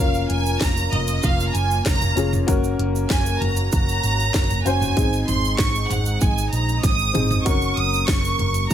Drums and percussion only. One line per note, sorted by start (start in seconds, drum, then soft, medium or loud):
0.14 shaker soft
0.30 closed hi-hat medium
0.46 shaker soft
0.61 kick loud
0.61 snare loud
0.61 clap medium
0.61 closed hi-hat medium
0.61 shaker medium
0.77 shaker medium
0.92 closed hi-hat medium
0.92 floor tom medium
1.07 closed hi-hat medium
1.07 shaker medium
1.23 kick medium
1.23 closed hi-hat medium
1.23 shaker medium
1.40 shaker medium
1.55 closed hi-hat medium
1.55 shaker soft
1.71 shaker soft
1.86 kick loud
1.86 snare loud
1.86 clap medium
1.86 closed hi-hat medium
1.86 shaker medium
2.01 floor tom medium
2.01 shaker soft
2.17 closed hi-hat medium
2.17 shaker medium
2.33 floor tom medium
2.33 shaker soft
2.48 kick loud
2.48 closed hi-hat loud
2.48 shaker medium
2.64 shaker soft
2.79 closed hi-hat medium
2.96 shaker soft
3.10 kick loud
3.10 snare loud
3.10 clap medium
3.10 closed hi-hat medium
3.10 shaker medium
3.26 shaker medium
3.41 closed hi-hat medium
3.41 floor tom medium
3.56 closed hi-hat medium
3.56 shaker medium
3.72 kick loud
3.72 closed hi-hat medium
3.72 shaker medium
3.89 shaker medium
4.03 closed hi-hat medium
4.03 shaker medium
4.20 shaker soft
4.34 kick loud
4.34 snare loud
4.34 clap medium
4.34 closed hi-hat medium
4.34 shaker medium
4.50 floor tom medium
4.50 shaker soft
4.66 closed hi-hat medium
4.66 shaker medium
4.81 floor tom medium
4.81 shaker medium
4.97 kick loud
4.97 closed hi-hat loud
4.97 shaker medium
5.13 shaker soft
5.28 closed hi-hat medium
5.28 floor tom medium
5.28 shaker soft
5.45 shaker soft
5.58 kick loud
5.58 snare loud
5.58 clap medium
5.58 closed hi-hat medium
5.58 shaker medium
5.75 shaker medium
5.90 closed hi-hat medium
5.90 floor tom medium
5.90 shaker medium
6.06 shaker medium
6.21 kick loud
6.21 closed hi-hat medium
6.21 shaker medium
6.38 shaker medium
6.53 closed hi-hat medium
6.53 shaker medium
6.69 shaker soft
6.83 kick loud
6.83 snare medium
6.83 closed hi-hat medium
6.83 shaker medium
6.99 shaker soft
7.15 closed hi-hat medium
7.15 mid tom loud
7.15 shaker medium
7.31 floor tom medium
7.31 shaker soft
7.46 kick loud
7.46 closed hi-hat loud
7.46 shaker medium
7.62 shaker soft
7.77 closed hi-hat medium
7.93 shaker soft
8.08 kick loud
8.08 snare loud
8.08 clap medium
8.08 closed hi-hat medium
8.08 shaker medium
8.25 shaker medium
8.39 closed hi-hat medium
8.39 floor tom medium
8.54 closed hi-hat medium
8.54 shaker medium
8.70 kick medium
8.70 closed hi-hat medium
8.70 shaker medium